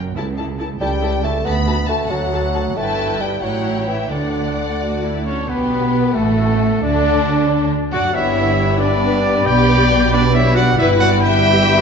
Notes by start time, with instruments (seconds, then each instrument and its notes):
0.16 double bass section C#2, cello section C#2, viola section E4 A4, violin section A5
0.37 viola section E4 A4, violin section A5
0.59 viola section E4 A4, violin section A5
0.80 double bass section C#2, cello section C#2, bassoon G3, viola section E4 A4, violin section G5 A5
1.02 viola section E4 A4, violin section A5
1.23 bassoon A3, viola section E4 A4, violin section A5
1.45 double bass section D2, cello section D2, bassoon B3, viola section F#4 A4, violin section A5 B5
1.67 viola section F#4 A4, violin section A5
1.88 bassoon A3, viola section F#4 A4, violin section A5
2.10 double bass section D2, cello section D2, bassoon F#3, viola section F#4 A4, violin section F#5 A5
2.32 viola section F#4 A4, violin section A5
2.54 viola section F#4 A4, violin section A5
2.76 double bass section G1, cello section G2, bassoon A3, viola section E4 B4, violin section G5 A5
3.21 bassoon G3, violin section G5
3.42 double bass section A1, cello section A2, bassoon F#3, viola section E4 C#5, violin section F#5 G5
3.88 bassoon E3, violin section E5
4.11 cello section D2, double bass section D2, bassoon D3, viola section D4 D5, violin section D5 F#5
4.80 viola section F#4
5.03 viola section E4
5.26 viola section C#4 D4, violin section A4, trumpet C#5
5.48 double bass section B1, cello section B2, violin section B3 G4, bassoon B3, clarinet B3, viola section B3, french horn section B3, trumpet B4, flute section B4
6.14 double bass section A1, cello section A2, violin section A3 F#4, bassoon A3, french horn section A3, clarinet A3, viola section A3, trumpet A4, flute section A4
6.82 double bass section D2, cello section D3, bassoon D4, violin section D4 A4, clarinet D4, viola section D4, french horn section D4, trumpet D5, flute section D5
7.92 double bass section F#2, cello section F#3, bassoon F#4, clarinet F#4, viola section F#4, violin section F#4 D5, french horn section F#4, trumpet F#5, flute section F#5
8.14 double bass section G1, cello section G2, bassoon G3, french horn section B3 D4, violin section B3 C#5, viola section E4, clarinet G4, trumpet E5, flute section B5
8.79 french horn section B3 D4, viola section D4, violin section B4, trumpet D5
9.46 double bass section B1, cello section B2, french horn section B3 D4, viola section G4, violin section D5, trumpet G5
10.12 french horn section B3 D4, viola section D4, violin section B4, trumpet D5
10.34 viola section E4, violin section C#5, trumpet E5
10.55 viola section F#4, violin section D5, trumpet F#5
10.78 double bass section G1, cello section G2, bassoon G3, violin section B3 B4, french horn section B3 E4, viola section E4, clarinet E4, trumpet E5, flute section B5
10.99 viola section F#4, violin section D5, trumpet F#5
11.22 viola section G4, violin section E5, trumpet G5